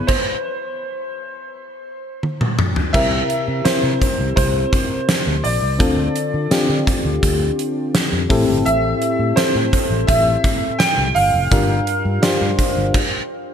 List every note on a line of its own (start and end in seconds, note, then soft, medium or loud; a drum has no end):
0.00 0.10 B3 medium
0.00 0.11 E4 medium
0.00 0.11 G#4 medium
0.00 0.10 B4 medium
0.07 2.18 C5 medium
0.07 kick medium
0.07 crash medium
2.23 high tom medium
2.41 mid tom medium
2.59 mid tom medium
2.76 floor tom medium
2.93 3.21 C2 medium
2.93 3.97 C3 medium
2.93 3.53 C4 medium
2.93 3.53 E4 medium
2.93 3.53 G4 medium
2.93 3.53 A#4 medium
2.93 3.67 E5 loud
2.93 kick loud
2.93 crash medium
3.30 closed hi-hat medium
3.48 3.61 C3 medium
3.65 4.83 C4 medium
3.65 4.83 E4 medium
3.65 4.84 G4 medium
3.65 4.84 A#4 medium
3.65 4.34 C5 medium
3.65 muted fretless electric bass stroke soft
3.65 snare medium
3.65 closed hi-hat medium
3.83 3.97 C3 medium
4.02 kick medium
4.02 closed hi-hat medium
4.19 4.33 C2 medium
4.36 4.64 C2 medium
4.36 5.47 C5 medium
4.36 kick medium
4.36 closed hi-hat medium
4.73 kick medium
4.73 closed hi-hat medium
5.09 snare loud
5.09 closed hi-hat medium
5.27 5.40 D2 medium
5.44 5.58 A#1 medium
5.44 6.83 D5 medium
5.44 open hi-hat medium
5.62 5.80 C2 medium
5.79 6.07 D2 medium
5.79 6.83 D3 medium
5.79 6.38 C4 medium
5.79 6.39 D4 medium
5.79 6.39 F4 medium
5.79 6.39 A4 medium
5.79 kick loud
5.79 closed hi-hat medium
6.16 closed hi-hat medium
6.34 6.47 D3 medium
6.51 7.69 C4 medium
6.51 7.69 D4 medium
6.51 7.69 F4 medium
6.51 7.70 G4 medium
6.51 muted fretless electric bass stroke soft
6.51 snare loud
6.51 closed hi-hat medium
6.69 6.83 D3 medium
6.87 kick medium
6.87 closed hi-hat medium
7.05 7.18 D2 medium
7.23 7.50 D2 loud
7.23 kick medium
7.23 closed hi-hat medium
7.59 closed hi-hat medium
7.95 snare loud
7.95 closed hi-hat medium
8.12 8.26 F2 medium
8.30 8.44 A1 medium
8.30 9.33 A2 medium
8.30 9.18 C4 medium
8.30 9.18 E4 medium
8.30 9.19 G4 medium
8.30 9.19 A4 loud
8.30 kick loud
8.30 open hi-hat medium
8.48 8.62 G1 medium
8.65 8.93 A1 loud
8.65 9.39 E5 medium
8.65 closed hi-hat medium
9.02 closed hi-hat medium
9.19 9.33 A2 medium
9.36 10.55 C4 medium
9.36 10.55 E4 medium
9.36 10.55 G4 medium
9.36 10.55 A4 medium
9.36 10.10 C5 medium
9.36 muted fretless electric bass stroke soft
9.36 snare loud
9.36 closed hi-hat loud
9.55 9.69 A2 medium
9.73 kick medium
9.73 closed hi-hat medium
9.90 10.04 A1 medium
10.07 10.35 A1 medium
10.07 10.82 E5 loud
10.07 kick loud
10.07 closed hi-hat medium
10.44 kick medium
10.44 closed hi-hat medium
10.79 11.16 G5 loud
10.79 snare loud
10.79 closed hi-hat medium
10.98 11.11 C2 medium
11.15 11.29 G1 medium
11.15 13.54 F5 loud
11.15 open hi-hat medium
11.34 11.47 F1 medium
11.51 11.79 G1 loud
11.51 12.55 G2 medium
11.51 12.10 D4 medium
11.51 12.10 F4 medium
11.51 12.11 G4 medium
11.51 12.11 A#4 medium
11.51 kick loud
11.51 closed hi-hat medium
11.87 closed hi-hat medium
12.05 12.19 G2 medium
12.22 12.94 D4 medium
12.22 12.94 F4 medium
12.22 12.94 G4 medium
12.22 12.95 C5 medium
12.22 snare loud
12.22 closed hi-hat medium
12.41 12.54 G2 loud
12.59 kick medium
12.59 closed hi-hat medium
12.77 12.90 G1 medium
12.94 kick medium
12.94 crash medium